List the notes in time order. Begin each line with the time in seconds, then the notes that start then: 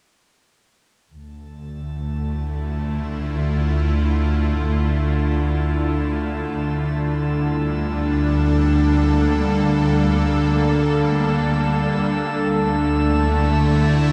1.13 D2 D3 A4 A5
1.46 A3
1.94 E4
2.31 F4
6.59 D2 G3
7.04 D4
7.59 A4
7.83 A#3
12.04 D2 D3
12.21 A3
12.97 E4